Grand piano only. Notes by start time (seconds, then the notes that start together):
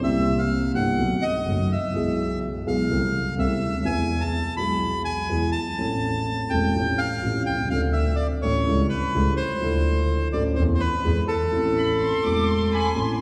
0.01 C2 C3 E3 A#3 C4
0.05 G4
0.74 G1 G2 E3 A#3 C4 G4
0.98 B1 B2 D#3 A3 B3 F#4
1.46 F#1 F#2 D#3 A3 B3 F#4
1.92 B1 B2 E3 G#3 B3
1.96 G#4
2.67 B1 B2 E3 G#3 B3 G#4
2.89 C2 C3 E3 A3 C4 A4
3.38 C2 C3 E3 A3 C4 A4
3.68 C#2
3.74 D2
3.80 D#2 E3
3.84 E2 G#3 B3 B4
4.55 B1 B2 E3 G#3 B3 G#4
5.29 E2 E3 G#3 B3 G#4
5.77 A1 A2 E3 A3 C4 A4
6.51 E1 E2 E3 A3 C4 A4
6.74 A1 A2 F3 A3 C4 G4
7.22 A1 A2 F3 A3 C4 G4
7.52 B1
7.60 C2
7.65 C#2 F3
7.71 D2 D3 C4 D4 A4
8.43 A1 A2 F3 C4 D4 A4
8.66 C#2 C#3 G3 C#4 E4 A4
9.14 C#2 C#3 G3 C#4 E4 A4
9.60 D2 D3 F3 D4 E4
9.64 A4
10.33 A1 A2 F3 D4 E4 A4
10.57 E2 E3 A3 C4 A4
11.04 E2 E3 G#3 B3 G#4
11.51 A1 A2 E3 A3 C4 A4
12.22 E1 E2 E3 A3 C4
12.26 A4
12.95 A1 A2 E3 A3 C4 A4